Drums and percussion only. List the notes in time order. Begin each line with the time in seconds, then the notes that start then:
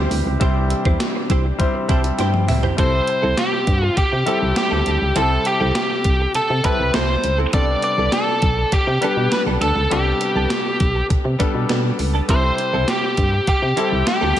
0.11 open hi-hat
0.41 kick, closed hi-hat
0.70 closed hi-hat
0.85 kick
1.00 snare, closed hi-hat
1.30 kick, closed hi-hat
1.60 kick, closed hi-hat
1.89 kick, closed hi-hat
2.04 closed hi-hat
2.19 snare, closed hi-hat
2.34 high tom
2.48 mid tom, open hi-hat
2.63 floor tom
2.78 kick, closed hi-hat
3.08 closed hi-hat
3.37 snare, closed hi-hat
3.67 kick, closed hi-hat
3.97 kick, closed hi-hat
4.27 closed hi-hat
4.56 snare, closed hi-hat
4.86 closed hi-hat
5.16 closed hi-hat
5.45 closed hi-hat
5.75 snare, closed hi-hat
6.04 kick, closed hi-hat
6.35 closed hi-hat
6.64 kick, closed hi-hat
6.94 snare, closed hi-hat
7.24 closed hi-hat
7.53 kick, closed hi-hat
7.82 closed hi-hat
8.12 snare, closed hi-hat
8.42 kick, closed hi-hat
8.72 kick, closed hi-hat
9.02 closed hi-hat
9.32 snare, closed hi-hat
9.62 closed hi-hat
9.91 closed hi-hat
10.21 closed hi-hat
10.50 snare, closed hi-hat
10.80 kick, closed hi-hat
11.10 kick, closed hi-hat
11.40 kick, closed hi-hat
11.69 snare, closed hi-hat
11.99 open hi-hat
12.29 kick, closed hi-hat
12.58 closed hi-hat
12.88 snare, closed hi-hat
13.17 kick, closed hi-hat
13.47 kick, closed hi-hat
13.77 closed hi-hat
14.07 snare, closed hi-hat
14.37 open hi-hat